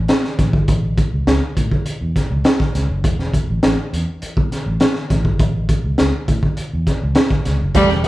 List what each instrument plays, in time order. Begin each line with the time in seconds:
0.08 snare, closed hi-hat
0.24 snare
0.39 fingered electric bass A1, kick, snare, closed hi-hat
0.53 fingered electric bass G1, kick
0.68 fingered electric bass A1, kick, closed hi-hat
0.98 kick, closed hi-hat
1.13 fingered electric bass C#2
1.27 fingered electric bass C#2, snare, closed hi-hat
1.57 fingered electric bass A2, kick, closed hi-hat
1.71 kick
1.86 muted fingered electric bass stroke, closed hi-hat
2.01 fingered electric bass E2
2.16 kick, snare, closed hi-hat
2.31 fingered electric bass C#2
2.44 snare, closed hi-hat
2.60 kick, snare
2.75 fingered electric bass C#2, snare, closed hi-hat
2.90 fingered electric bass F#1
3.04 fingered electric bass E1, kick, closed hi-hat
3.19 snare
3.34 kick, closed hi-hat
3.49 fingered electric bass A1
3.63 fingered electric bass A1, snare, closed hi-hat
3.93 fingered electric bass E2, closed hi-hat
4.22 muted fingered electric bass stroke, closed hi-hat
4.37 fingered electric bass B1, kick
4.52 snare, closed hi-hat
4.66 fingered electric bass A1
4.80 snare, closed hi-hat
4.95 snare
5.10 fingered electric bass A1, kick, snare, closed hi-hat
5.25 fingered electric bass G1, kick
5.39 fingered electric bass A1, kick, closed hi-hat
5.69 kick, closed hi-hat
5.84 fingered electric bass C#2
5.98 fingered electric bass C#2, snare, closed hi-hat
6.28 fingered electric bass A2, kick, closed hi-hat
6.43 kick
6.57 muted fingered electric bass stroke, closed hi-hat
6.73 fingered electric bass E2
6.87 kick, snare, closed hi-hat
7.03 fingered electric bass C#2
7.15 snare, closed hi-hat
7.30 kick, snare
7.45 fingered electric bass C#2, snare, closed hi-hat
7.62 fingered electric bass F#1
7.75 fingered electric bass E1, alto saxophone G3, clean electric guitar A3 G4 A4 D5, kick, closed hi-hat
7.89 muted clean electric guitar stroke, snare
8.04 clean electric guitar G3, closed hi-hat